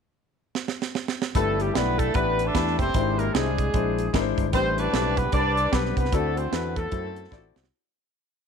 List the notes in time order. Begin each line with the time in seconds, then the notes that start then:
0.55 snare
0.68 snare
0.82 snare
0.95 snare
1.08 snare
1.22 snare
1.35 G1 G2 A3 D4 E4 G4 A4 B4, kick, closed hi-hat
1.60 G3 G4, closed hi-hat
1.75 B1 A3 B3 E4 G4 B4 D5, snare, closed hi-hat
1.99 A3 A4, kick, closed hi-hat
2.14 A1 A3 B3 D4 E4 G4 B4 D5, kick, closed hi-hat
2.39 closed hi-hat
2.46 D4 A4 B4 D5
2.54 E2 A3 E4 G4 B4, kick, snare, closed hi-hat
2.67 snare
2.79 F#1 C4 E4 G4 C5, kick, closed hi-hat
2.94 G#1 G#2 G#3 D4 E4 C5, kick, closed hi-hat
3.18 A#3 A#4, closed hi-hat
3.33 C2 G#3 C4 D4 E4 G#4 C5, snare, closed hi-hat
3.58 kick, closed hi-hat
3.73 A#1 G#3 D4 E4 C5, kick, closed hi-hat
3.99 closed hi-hat
4.13 G#1 G#3 D4 E4 A#4, kick, snare, closed hi-hat
4.20 C5
4.38 G1, kick, closed hi-hat
4.52 A1 A2 G3 B3 C4 D4 E4 G4 B4 C5, kick, closed hi-hat
4.58 C4
4.78 D4 G4 B4 D5, closed hi-hat
4.92 B1 G3 C4 D4 A4, snare, closed hi-hat
4.98 B4
5.17 B3 B4, kick, closed hi-hat
5.32 C2 G3 C4 D4 G4 A#4 B4 D5, kick, closed hi-hat
5.38 B4
5.57 closed hi-hat
5.72 B1 G3 B3 C4 D4 B4, kick, snare, closed hi-hat
5.85 snare
5.97 C2 B3 B4, kick, closed hi-hat
6.05 snare
6.12 D2 D3 A3 C4 E4 F#4 A4 D5, kick, closed hi-hat
6.37 C4 C5, closed hi-hat
6.51 E2 B3 C4 E4 F#4 A4 B4, snare, closed hi-hat
6.76 A3 C4 F#4 A4, kick, closed hi-hat
6.91 F#2 C4 E4 F#4 A4, kick, closed hi-hat
7.16 closed hi-hat
7.31 A1 C4 E4 F4 D5, kick, snare
7.37 F#4
7.56 C2, snare
7.64 snare